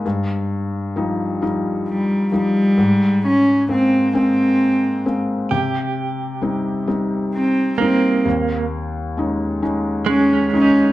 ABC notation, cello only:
X:1
M:6/8
L:1/8
Q:3/8=44
K:Ebmix
V:1 name="Cello"
z4 G, G,- | G, D C C2 z | z4 C C | z4 D D |]